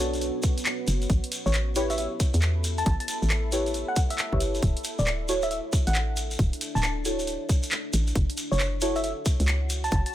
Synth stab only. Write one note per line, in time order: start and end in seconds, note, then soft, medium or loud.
0.00 1.09 D4 medium
0.00 1.09 F#4 medium
0.00 1.09 A4 medium
0.00 1.09 C#5 medium
1.76 3.50 E4 loud
1.76 3.50 G4 medium
1.76 3.50 B4 medium
1.76 3.50 C#5 loud
3.52 4.30 E4 medium
3.52 4.30 G4 medium
3.52 4.30 B4 medium
3.52 4.30 C#5 medium
4.33 4.62 E4 medium
4.33 4.62 G4 medium
4.33 4.62 B4 medium
4.33 4.62 C#5 medium
5.29 7.03 E4 loud
5.29 7.03 F#4 medium
5.29 7.03 A4 medium
5.29 7.03 C#5 loud
7.05 8.15 E4 medium
7.05 8.15 F#4 medium
7.05 8.15 A4 medium
7.05 8.15 C#5 medium
8.82 10.15 E4 loud
8.82 10.15 F#4 medium
8.82 10.15 A4 medium
8.82 10.15 C#5 loud